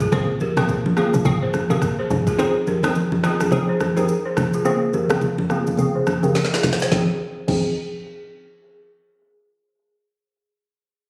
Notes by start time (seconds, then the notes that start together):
0.00 F4 G#4, kick, shaker
0.12 A#1 C#3 A#3 C4 G#4 C5, kick, shaker
0.40 G4 A#4, high conga, shaker
0.57 A#1 C#3 A#3 C4 G#4, cross-stick, high conga, shaker
0.69 kick, shaker
0.86 high conga
0.97 C#3 A#3 C4 F4 G#4, cross-stick, shaker
1.14 A#1, high conga, shaker
1.25 G#1 C#3 A#3 C4 G#4, kick, low conga, shaker
1.42 G#4 C5
1.53 cross-stick, high conga, shaker
1.70 G#1 C#3 A#3 C4 G4 G#4 A#4, high conga, shaker
1.82 kick, cross-stick, shaker
1.99 G#4 C5
2.10 G1, high conga, low conga, shaker
2.27 F4 G#4, kick, shaker
2.38 F3 C4 D#4 G#4 C5, shaker
2.67 G4 A#4, high conga, shaker
2.83 F3 C4 D#4 G#4, cross-stick, high conga, shaker
2.95 shaker
3.12 high conga
3.23 F3 C4 D#4 F4 G#4, cross-stick, shaker
3.40 cross-stick, high conga, shaker
3.51 F3 C4 D#4 G#4, low conga, shaker
3.69 G#4 C5
3.80 cross-stick, high conga, shaker
3.96 F3 C4 D#4 G4 G#4 A#4, high conga, shaker
4.09 shaker
4.25 G#4 C5
4.37 cross-stick, high conga, low conga, shaker
4.53 F4 G#4, shaker
4.65 C#3 A#3 C4 G#4 C5, shaker
4.93 G4 A#4, high conga, shaker
5.09 C#3 A#3 C4 G#4, cross-stick, high conga, shaker
5.21 low conga, shaker
5.38 high conga
5.50 C#3 A#3 C4 F4 G#4, cross-stick, shaker
5.67 high conga, shaker
5.77 C#3 A#3 C4 G#4, low conga, shaker
5.95 G#4 C5
6.07 cross-stick, high conga, shaker
6.23 C#3 A#3 C4 G4 G#4 A#4, high conga, shaker
6.35 snare, shaker
6.45 snare
6.52 F4 G#4, snare
6.63 snare, high conga, low conga, shaker
6.73 snare
6.80 G#4 C5, snare, shaker
6.91 F3 C4 D#4 G#4, kick, snare, high conga
7.47 F3 C4 D#4 G#4, kick, crash, high conga